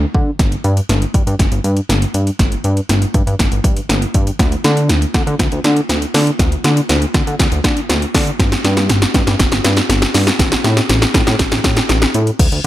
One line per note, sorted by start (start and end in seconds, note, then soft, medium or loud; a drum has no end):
0.14 0.31 D3 medium
0.14 kick medium
0.39 0.56 G1 loud
0.39 kick loud
0.39 snare medium
0.39 closed hi-hat medium
0.52 closed hi-hat medium
0.64 0.81 G2 loud
0.64 closed hi-hat medium
0.77 closed hi-hat medium
0.89 1.06 G1 loud
0.89 snare medium
0.89 closed hi-hat loud
1.02 closed hi-hat soft
1.14 1.23 G2 loud
1.14 kick loud
1.14 closed hi-hat medium
1.27 1.35 G2 loud
1.27 closed hi-hat medium
1.39 1.48 G1 loud
1.39 kick medium
1.39 snare medium
1.39 closed hi-hat medium
1.52 1.60 G1 medium
1.52 closed hi-hat soft
1.64 1.81 G2 medium
1.64 closed hi-hat medium
1.77 closed hi-hat medium
1.89 2.06 G1 loud
1.89 snare medium
1.89 closed hi-hat medium
2.02 closed hi-hat medium
2.14 2.31 G2 medium
2.14 closed hi-hat medium
2.27 closed hi-hat medium
2.39 2.56 G1 loud
2.39 kick loud
2.39 snare medium
2.39 closed hi-hat medium
2.52 closed hi-hat medium
2.64 2.81 G2 loud
2.64 closed hi-hat medium
2.77 closed hi-hat medium
2.89 3.06 G1 loud
2.89 snare medium
2.89 closed hi-hat loud
3.02 closed hi-hat medium
3.14 3.23 G2 loud
3.14 kick medium
3.14 closed hi-hat medium
3.27 3.35 G2 loud
3.27 closed hi-hat medium
3.39 3.48 G1 loud
3.39 kick medium
3.39 snare medium
3.39 closed hi-hat medium
3.52 3.60 G1 loud
3.52 closed hi-hat soft
3.64 3.81 G2 loud
3.64 kick medium
3.64 closed hi-hat medium
3.77 closed hi-hat medium
3.89 4.06 G1 loud
3.89 snare medium
3.89 closed hi-hat medium
4.02 closed hi-hat medium
4.14 4.31 G2 loud
4.14 kick medium
4.14 closed hi-hat medium
4.27 closed hi-hat medium
4.39 4.56 D2 loud
4.39 kick loud
4.39 snare medium
4.39 closed hi-hat medium
4.52 closed hi-hat medium
4.64 4.91 D3 loud
4.64 snare medium
4.64 closed hi-hat medium
4.77 closed hi-hat medium
4.89 5.06 D2 medium
4.89 snare medium
4.89 closed hi-hat loud
5.02 closed hi-hat medium
5.14 5.23 D3 loud
5.14 kick loud
5.14 snare medium
5.14 closed hi-hat medium
5.27 5.35 D3 loud
5.27 closed hi-hat medium
5.39 5.48 D2 loud
5.39 kick medium
5.39 snare medium
5.39 closed hi-hat medium
5.52 5.60 D2 loud
5.52 closed hi-hat medium
5.64 5.81 D3 loud
5.64 snare medium
5.64 closed hi-hat medium
5.77 closed hi-hat medium
5.89 6.06 D2 loud
5.89 snare medium
5.89 closed hi-hat medium
6.02 closed hi-hat medium
6.14 6.31 D3 loud
6.14 snare medium
6.14 open hi-hat medium
6.27 closed hi-hat medium
6.39 6.56 D2 loud
6.39 kick loud
6.39 snare medium
6.39 closed hi-hat loud
6.52 closed hi-hat medium
6.64 6.81 D3 loud
6.64 snare loud
6.64 closed hi-hat medium
6.77 closed hi-hat medium
6.89 7.06 D2 loud
6.89 snare loud
6.89 closed hi-hat loud
7.02 closed hi-hat medium
7.14 7.23 D3 loud
7.14 kick medium
7.14 snare medium
7.14 closed hi-hat medium
7.27 7.35 D3 loud
7.27 closed hi-hat medium
7.39 7.48 D2 loud
7.39 kick medium
7.39 snare loud
7.39 closed hi-hat medium
7.52 7.60 D2 loud
7.52 closed hi-hat medium
7.64 7.80 D3 medium
7.64 kick medium
7.64 snare medium
7.64 closed hi-hat medium
7.77 closed hi-hat medium
7.89 8.06 D2 loud
7.89 snare loud
7.89 closed hi-hat medium
8.02 closed hi-hat medium
8.14 8.31 D3 medium
8.14 kick medium
8.14 snare loud
8.14 open hi-hat medium
8.27 closed hi-hat soft
8.39 8.56 G1 loud
8.39 kick loud
8.39 snare medium
8.39 closed hi-hat loud
8.52 snare loud
8.52 closed hi-hat soft
8.64 8.91 G2 loud
8.64 snare loud
8.64 closed hi-hat medium
8.77 snare loud
8.77 closed hi-hat medium
8.89 9.06 G1 loud
8.89 snare loud
8.89 closed hi-hat loud
9.02 snare loud
9.02 closed hi-hat medium
9.14 9.23 G2 loud
9.14 kick loud
9.14 snare loud
9.14 closed hi-hat medium
9.27 9.35 G2 loud
9.27 snare loud
9.27 closed hi-hat medium
9.39 9.48 G1 loud
9.39 kick medium
9.39 snare loud
9.39 closed hi-hat medium
9.52 9.60 G1 medium
9.52 snare loud
9.52 closed hi-hat medium
9.64 9.81 G2 loud
9.64 snare loud
9.64 closed hi-hat medium
9.77 snare loud
9.77 closed hi-hat medium
9.89 10.06 G1 loud
9.89 snare loud
9.89 closed hi-hat medium
10.02 snare loud
10.02 closed hi-hat medium
10.14 10.31 G2 loud
10.14 snare loud
10.14 open hi-hat medium
10.27 snare loud
10.27 closed hi-hat medium
10.39 10.56 A1 loud
10.39 kick loud
10.39 snare loud
10.39 closed hi-hat loud
10.52 snare loud
10.52 closed hi-hat medium
10.64 10.81 A2 loud
10.64 snare loud
10.64 closed hi-hat medium
10.77 snare loud
10.77 closed hi-hat medium
10.89 11.06 A1 loud
10.89 snare loud
10.89 closed hi-hat loud
11.02 snare loud
11.02 closed hi-hat medium
11.14 11.23 A2 loud
11.14 kick loud
11.14 snare loud
11.14 closed hi-hat medium
11.27 11.35 A2 loud
11.27 snare loud
11.27 closed hi-hat medium
11.39 11.48 A1 loud
11.39 kick medium
11.39 snare loud
11.39 closed hi-hat medium
11.52 11.60 A1 loud
11.52 snare loud
11.52 closed hi-hat medium
11.64 11.80 A2 loud
11.64 kick medium
11.64 snare loud
11.64 closed hi-hat medium
11.76 snare loud
11.76 closed hi-hat medium
11.89 12.06 A1 loud
11.89 snare loud
11.89 closed hi-hat medium
12.02 snare loud
12.02 closed hi-hat medium
12.14 12.31 A2 loud
12.14 closed hi-hat medium
12.27 closed hi-hat medium
12.39 12.48 D2 loud
12.39 kick loud
12.39 closed hi-hat loud
12.39 crash loud
12.52 12.60 D2 loud
12.52 closed hi-hat medium